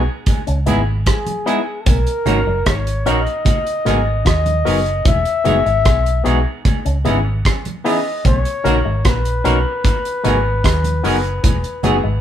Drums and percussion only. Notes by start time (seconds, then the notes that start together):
0.26 kick, closed hi-hat, low conga
0.47 closed hi-hat
0.67 closed hi-hat, low conga
1.06 kick, cross-stick, closed hi-hat, high conga
1.26 closed hi-hat, high conga
1.47 closed hi-hat
1.86 kick, closed hi-hat, low conga
2.07 closed hi-hat
2.26 closed hi-hat, low conga
2.66 kick, cross-stick, closed hi-hat, high conga
2.87 closed hi-hat
3.06 closed hi-hat, high conga
3.27 closed hi-hat
3.45 kick, closed hi-hat, low conga
3.67 closed hi-hat
3.86 cross-stick, closed hi-hat, low conga
4.25 kick, cross-stick, closed hi-hat, high conga
4.46 closed hi-hat, high conga
4.67 open hi-hat
4.86 closed hi-hat
5.05 kick, closed hi-hat, low conga
5.25 closed hi-hat
5.45 closed hi-hat, low conga
5.66 closed hi-hat
5.85 kick, cross-stick, closed hi-hat, high conga
6.06 closed hi-hat
6.26 closed hi-hat, high conga
6.65 kick, closed hi-hat, low conga
6.86 closed hi-hat
7.05 closed hi-hat, low conga
7.45 kick, cross-stick, closed hi-hat, high conga
7.65 closed hi-hat, high conga
7.86 open hi-hat
8.25 kick, closed hi-hat, low conga
8.45 closed hi-hat
8.65 closed hi-hat, low conga
9.05 kick, cross-stick, closed hi-hat, high conga
9.25 closed hi-hat
9.45 closed hi-hat, high conga
9.84 kick, closed hi-hat, low conga
10.05 closed hi-hat
10.25 closed hi-hat, low conga
10.64 kick, cross-stick, closed hi-hat, high conga
10.84 closed hi-hat, high conga
11.04 open hi-hat
11.24 closed hi-hat
11.44 kick, closed hi-hat, low conga
11.64 closed hi-hat
11.83 closed hi-hat, low conga